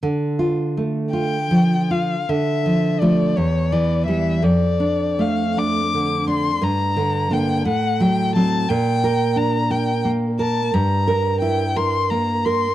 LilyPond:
<<
  \new Staff \with { instrumentName = "Violin" } { \time 6/8 \key d \minor \tempo 4. = 58 r4. g''4 f''8 | e''4 d''8 cis''8 d''8 e''8 | d''4 f''8 d'''4 c'''8 | bes''4 g''8 fis''8 g''8 a''8 |
g''4 bes''8 g''8 r8 a''8 | bes''4 g''8 c'''8 bes''8 c'''8 | }
  \new Staff \with { instrumentName = "Nylon-string guitar" } { \time 6/8 \key d \minor d8 f'8 a8 f'8 f8 f'8 | d8 f8 <f a>8 e,8 e8 <e g>8 | f,8 d'8 a8 d'8 d8 d'8 | g,8 d8 <d bes>8 a,8 fis8 <fis c'>8 |
bes,8 bes'8 d'8 bes'8 bes8 bes'8 | g,8 bes'8 e'8 bes'8 bes8 bes'8 | }
>>